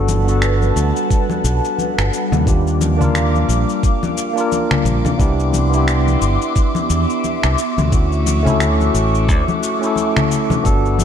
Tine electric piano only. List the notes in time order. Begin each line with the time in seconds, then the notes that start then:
Already playing: B3 D4 F#4 A4
0.24 B3 D4
0.29 F#4 A4
2.45 A#3 D4 F4 G4
2.97 A#3 D4
3.01 F4 A#4
4.34 A#3 D4
4.38 F4 A#4
5.18 B3 D4 E4 G4
5.70 B3 D4
5.74 E4 G4
7.90 A3 C#4 E4 F#4
8.43 A3 C#4
8.47 E4 A4
9.79 A3 C#4
9.84 E4 A4
10.63 B3 D4 F#4 A4